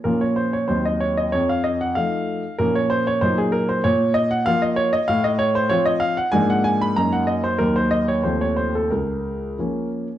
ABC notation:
X:1
M:2/4
L:1/16
Q:1/4=95
K:Bbm
V:1 name="Grand piano"
B d c d c e d e | d f e g f4 | B d c d c A B c | d2 e g f e d e |
f e d c d e f g | a g a _c' b g e =c | B c e d c d c =A | B6 z2 |]
V:2 name="Grand piano" clef=bass
[B,,F,DF]4 [E,,G,CE]4 | F,,4 [F,=A,E]4 | [B,,F,B,D]4 [B,,G,B,E]4 | B,,4 [F,B,F]4 |
=A,,4 [F,CF]4 | [A,,F,B,=D]4 [G,,G,B,E]4 | [E,,G,B,E]4 [E,,F,=A,C]4 | D,,4 [F,B,D]4 |]